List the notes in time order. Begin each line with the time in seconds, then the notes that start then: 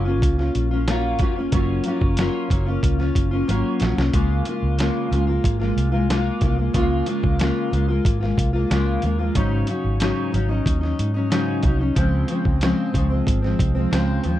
Already playing: F#1
0.05 A#3 C#4 F4
0.22 C#2, kick, closed hi-hat
0.38 A#3 C#4 F4, snare
0.55 A#1, closed hi-hat
0.71 A#3 C#4 F4
0.88 F#3 A#3 C#4 F4, snare, closed hi-hat
1.19 F1 F#3 A#3 C#4, kick, closed hi-hat
1.23 F4
1.36 A#3 C#4 F4
1.52 F#1 F#3 A#3 C#4 F4, kick, closed hi-hat
1.84 F#3 A#3, closed hi-hat
1.88 C#4 F4
2.01 F#1, kick
2.17 F#3 A#3 C#4 F4, snare, closed hi-hat
2.50 F#1 F#3 A#3 C#4 F4, kick, closed hi-hat
2.66 A#3 C#4 F4
2.83 C#2, kick, closed hi-hat
2.99 A#3 C#4 F4, snare
3.15 F#1, kick, closed hi-hat
3.31 A#3 C#4 F4
3.48 G#1 F#3 A#3 C#4 F4, closed hi-hat
3.80 A#1 F#3 A#3 C#4, snare, closed hi-hat
3.84 F4
3.97 C2 A#3 C#4 F4, snare
4.13 C#2 C#3 G#3 A#3 F4, kick, closed hi-hat
4.45 C#3 G#3 A#3 F4, closed hi-hat
4.63 C#2
4.78 C#3 G#3 A#3 F4, snare, closed hi-hat
5.11 C#2 C#3 G#3 A#3 F4, closed hi-hat
5.27 G#3 A#3 F4
5.44 G#1, kick, closed hi-hat
5.59 G#3 A#3 F4, snare
5.76 C2, closed hi-hat
5.92 G#3 A#3 F4
6.10 G#3 A#3 F4, snare, closed hi-hat
6.40 C2 C#3 G#3 A#3 F4, kick, closed hi-hat
6.57 G#3 A#3 F4
6.73 C#2 C#3 G#3 A#3 F4, kick, closed hi-hat
7.06 C#3 G#3 A#3 F4, closed hi-hat
7.23 C#2, kick
7.39 C#3 G#3 A#3 F4, snare, closed hi-hat
7.71 C#2 C#3 G#3 A#3 F4, closed hi-hat
7.88 G#3 A#3 F4
8.05 G#1, kick, closed hi-hat
8.20 G#3 A#3 F4, snare
8.38 C2, kick, closed hi-hat
8.53 G#3 A#3 F4
8.70 C#2 C#3 G#3 A#3 F4, snare, closed hi-hat
9.02 D#2 C#3 G#3 A#3 F4, closed hi-hat
9.19 G#3 A#3 F4
9.35 G#1 G#2 C#3 F#3 C#4 D#4, kick, closed hi-hat
9.67 C#3 F#3 C#4 D#4, closed hi-hat
9.84 G#1
10.00 G#2 C#3 F#3 C#4 D#4, snare, closed hi-hat
10.32 G#1 C#3 F#3 C#4 D#4, closed hi-hat
10.49 F#3 C#4 D#4
10.66 D#2, kick, closed hi-hat
10.81 F#3 C#4 D#4, snare
10.99 G#2, closed hi-hat
11.14 F#3 C#4 D#4
11.30 G#2 C#3 F#3 C#4 D#4, snare, closed hi-hat
11.63 C2 C#3 F#3 C#4 D#4, kick, closed hi-hat
11.79 F#3 C#4 D#4
11.95 C#2 C#3 F3 G#3 C4, kick, closed hi-hat
12.28 C#3 F3 G#3 C4, closed hi-hat
12.45 C#2, kick
12.61 C#3 F3 G#3 C4, snare, closed hi-hat
12.93 C#2 C#3 F3 G#3 C4, kick, closed hi-hat
13.10 F3 G#3 C4
13.27 G#1, kick, closed hi-hat
13.42 F3 G#3 C4, snare
13.59 C2, kick, closed hi-hat
13.75 F3 G#3 C4
13.91 C#2 C#3 F3 G#3 C4, snare, closed hi-hat
14.23 D#2 C#3 F3 G#3 C4, closed hi-hat